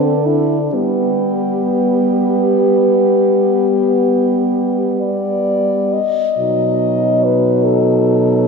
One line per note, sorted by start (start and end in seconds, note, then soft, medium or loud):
0.00 0.71 D3 soft
0.00 0.14 C4 soft
0.00 0.28 D4 soft
0.05 0.16 A4 soft
0.14 0.25 B4 soft
0.23 0.60 E4 soft
0.23 0.58 A4 soft
0.28 0.75 D4 soft
0.73 5.98 G3 soft
0.73 5.69 B3 soft
0.73 5.99 B3 soft
0.73 4.94 G4 soft
5.00 5.94 D5 medium
5.93 7.25 D#5 medium
6.38 8.48 B2 soft
6.38 8.48 F#3 soft
6.38 8.48 D#4 soft
7.24 7.65 B4 medium
7.64 8.48 A4 medium